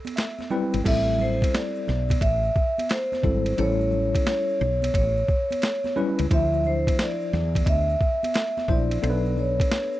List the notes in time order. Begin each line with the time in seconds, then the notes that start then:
Already playing: A4
0.05 ride, high conga, shaker
0.16 E5, snare, hi-hat pedal, ride, shaker
0.39 snare, high conga, shaker
0.50 G3 C4 E4 B4 G5, low conga, shaker
0.72 G#1, ride, shaker
0.84 A1 G3 C4 E4 A4 E5, kick, crash, ride, shaker
1.07 shaker
1.18 C5, low conga, shaker
1.41 kick, ride, high conga, shaker
1.53 D5, snare, hi-hat pedal, ride, shaker
1.75 shaker
1.87 B1, snare, low conga, shaker
2.09 kick, ride, high conga, shaker
2.21 A1 E5, kick, ride, high conga, shaker
2.43 shaker
2.55 kick, shaker
2.78 ride, high conga, shaker
2.89 C5, snare, hi-hat pedal, ride, shaker
3.12 snare, high conga, shaker
3.23 G#1 G3 C4 E4 A4, kick, low conga, shaker
3.46 ride, shaker
3.57 A1 G3 C#4 E4 A4 C#5, ride, shaker
3.80 shaker
3.91 low conga, shaker
4.14 kick, ride, high conga, shaker
4.26 C#5, snare, hi-hat pedal, ride, shaker
4.49 shaker
4.61 B1, low conga, shaker
4.82 ride, high conga, shaker
4.93 A1 C#5, kick, ride, high conga, shaker
5.16 shaker
5.28 kick, shaker
5.51 ride, high conga, shaker
5.62 snare, hi-hat pedal, ride, shaker
5.84 snare, high conga, shaker
5.96 G3 C#4 E4 B4, low conga, shaker
6.19 C#2, ride, shaker
6.30 D2 F3 D4 E4 C5 E5, kick, ride, shaker
6.53 shaker
6.64 C5, low conga, shaker
6.87 kick, ride, high conga, shaker
6.99 D5, snare, hi-hat pedal, ride, shaker
7.21 shaker
7.33 E2, snare, low conga, shaker
7.55 kick, ride, high conga, shaker
7.65 D2 D#5 E5, kick, ride, high conga, shaker
7.89 shaker
8.01 kick, shaker
8.23 ride, high conga, shaker
8.34 snare, hi-hat pedal, ride, shaker
8.57 snare, high conga, shaker
8.68 A#1 F3 D4 E4 C5 D5, kick, low conga, shaker
8.91 ride, shaker
9.02 B1 B3 D4 A4 C5, ride, shaker
9.10 B4
9.25 shaker
9.37 C#5, low conga, shaker
9.60 kick, ride, high conga, shaker
9.71 snare, hi-hat pedal, ride, shaker
9.93 shaker